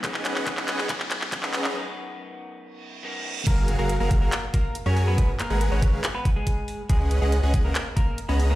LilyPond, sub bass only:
\new Staff \with { instrumentName = "Sub bass" } { \clef bass \time 4/4 \key fis \major \tempo 4 = 140 r1 | r1 | fis,,8. fis,,8 fis,,8 fis,,16 r4 r16 fis,8. | gis,,16 r8 gis,,8 gis,,8 gis,,16 r2 |
cis,8. cis,8 cis,8 cis,16 r4 r16 cis,8. | }